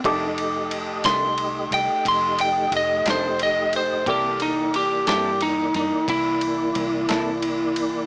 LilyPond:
<<
  \new Staff \with { instrumentName = "Lead electric guitar" } { \time 12/8 \key f \major \tempo 4. = 60 r4. c'''4 g''8 c'''8 g''8 ees''8 c''8 ees''8 c''8 | g'8 ees'8 g'8 g'8 ees'8 ees'8 e'2. | }
  \new Staff \with { instrumentName = "Upright piano" } { \time 12/8 \key f \major <ees' g' a' d'''>1. | <g' a' bes' d''>1. | }
  \new Staff \with { instrumentName = "Tonewheel organ" } { \time 12/8 \key f \major <a ees' g' ees''>1. | <e bes d''>1. | }
  \new Staff \with { instrumentName = "Clean electric guitar" } { \time 12/8 \key f \major <f, ees a d'>8 r4 <f, ees a d'>8 r2 r8 <f, ees a d'>8 r4 | <c bes e' a'>8 r4 <c bes e' a'>8 r2 r8 <c bes e' a'>8 r4 | }
  \new Staff \with { instrumentName = "Fingered electric bass" } { \clef bass \time 12/8 \key f \major f,,4. c,4 c,16 r16 f,,4 f,,8 f,,4. | c,4. g,4 g,16 r16 c,4 c,8 c,4. | }
  \new DrumStaff \with { instrumentName = "Drums" } \drummode { \time 12/8 <bd cymr>8 cymr8 cymr8 <cymr sn>8 cymr8 cymr8 <bd cymr>8 cymr8 cymr8 <cymr sn>8 cymr8 cymr8 | <bd cymr>8 cymr8 cymr8 <cymr sn>8 cymr8 cymr8 <bd cymr>8 cymr8 cymr8 <cymr sn>8 cymr8 cymr8 | }
>>